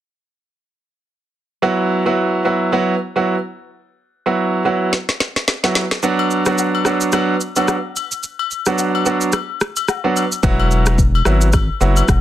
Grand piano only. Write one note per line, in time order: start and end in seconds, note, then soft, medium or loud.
1.62 2.02 F#3 medium
1.62 2.02 B3 medium
1.62 2.02 E4 medium
1.62 2.02 F#4 medium
2.06 2.42 F#3 medium
2.06 2.42 B3 medium
2.06 2.42 E4 medium
2.06 2.42 F#4 medium
2.45 2.71 F#3 medium
2.45 2.71 B3 medium
2.45 2.71 E4 medium
2.45 2.71 F#4 medium
2.72 2.93 F#3 medium
2.72 2.93 B3 medium
2.72 2.93 E4 medium
2.72 2.93 F#4 medium
3.16 3.34 F#3 medium
3.16 3.34 B3 medium
3.16 3.34 E4 medium
3.16 3.34 F#4 medium
4.26 4.62 F#3 medium
4.26 4.62 B3 medium
4.26 4.63 E4 medium
4.26 4.63 F#4 medium
4.65 4.91 F#3 medium
4.65 4.91 B3 medium
4.65 4.91 E4 medium
4.65 4.91 F#4 medium
5.63 5.82 F#3 medium
5.63 5.82 B3 medium
5.63 5.82 E4 medium
5.63 5.82 F#4 medium
6.03 6.42 F#3 medium
6.03 6.43 B3 medium
6.03 6.43 D4 medium
6.03 6.43 F#4 loud
6.46 6.83 F#3 medium
6.46 6.83 B3 medium
6.46 6.83 D4 medium
6.46 6.83 F#4 medium
6.85 7.11 F#3 medium
6.85 7.11 B3 medium
6.85 7.11 D4 medium
6.85 7.11 F#4 medium
7.13 7.33 F#3 medium
7.13 7.34 B3 medium
7.13 7.34 D4 medium
7.13 7.34 F#4 loud
7.56 7.74 F#3 medium
7.56 7.74 B3 medium
7.56 7.75 D4 medium
7.56 7.75 F#4 medium
8.66 9.03 F#3 medium
8.66 9.03 B3 medium
8.66 9.03 D4 medium
8.66 9.03 F#4 medium
9.05 9.31 F#3 medium
9.05 9.31 B3 medium
9.05 9.31 D4 medium
9.05 9.32 F#4 medium
10.04 10.22 F#3 medium
10.04 10.22 B3 medium
10.04 10.22 D4 medium
10.04 10.22 F#4 medium
10.43 10.94 F#3 medium
10.43 10.95 B3 medium
10.43 10.95 E4 medium
10.43 10.95 F#4 loud
11.26 11.46 F#3 medium
11.26 11.46 B3 medium
11.26 11.47 E4 medium
11.26 11.47 F#4 medium
11.81 12.01 F#3 medium
11.81 12.01 B3 medium
11.81 12.02 E4 medium
11.81 12.02 F#4 medium